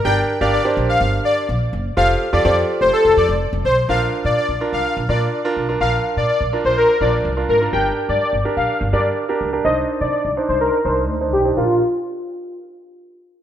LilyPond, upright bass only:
\new Staff \with { instrumentName = "Upright bass" } { \clef bass \time 4/4 \key bes \major \tempo 4 = 125 g,,8 r16 g,,8 r16 bes,,8 g,,8 r8 bes,,8 ges,,8 | f,,8 r16 f,16 f,8 r16 f,,16 r16 f,,16 f,16 f,,8 f,,16 ces,8 | bes,,8 r16 bes,16 r16 bes,,16 r16 c,16 r16 bes,,16 bes,8 r8 ces,8 | bes,,8 r16 bes,16 r16 bes,,16 r16 bes,,8 r16 bes,,8 c,8 aes,,8 |
g,,8 r16 g,16 r16 g,,16 r16 bes,,16 r16 g,,16 g,8 r8 des,8 | c,8 r16 c16 r16 c,16 r16 c,8 r16 c,8 d,8 ces,8 | bes,,8 r2. r8 | }